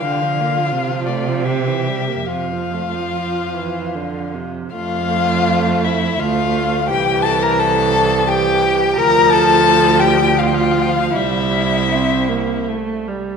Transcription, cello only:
X:1
M:3/4
L:1/8
Q:1/4=81
K:F
V:1 name="Cello" clef=bass
D,2 C,4 | F,,4- F,, z | F,,4 D,,2 | C,,6 |
D,,6 | C,,4- C,, z |]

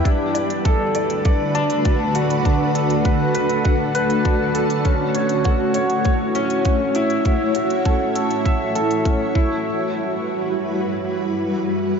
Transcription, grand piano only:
X:1
M:4/4
L:1/8
Q:1/4=100
K:Edor
V:1 name="Grand piano"
D d A d d D D F | D A B B f B D A | C c F c c C C E | C F A A e A C E- |
E z6 z |]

